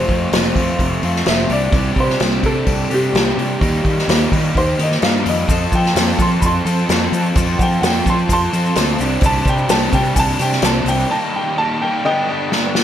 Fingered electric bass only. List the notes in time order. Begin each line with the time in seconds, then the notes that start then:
0.08 F2
0.32 F1
0.56 F2
0.79 F1
1.03 F2
1.26 F1
1.50 C2
1.72 C2
1.96 C3
2.20 C2
2.43 C3
2.67 C2
2.91 C3
3.14 C2
3.37 C3
3.61 D#2
3.84 D#3
4.08 D#2
4.32 D#3
4.55 D#2
4.79 D#3
5.02 G2
5.26 F2
5.48 F2
5.72 F3
5.95 F2
6.18 F3
6.42 F2
6.65 F3
6.89 F2
7.12 F3
7.36 F2
7.59 F3
7.82 F2
8.06 F3
8.29 F2
8.53 F3
8.76 D2
8.99 C2
9.22 C2
9.45 C3
9.68 C2
9.93 C3
10.16 C2
10.39 C3
10.62 C2
10.85 C2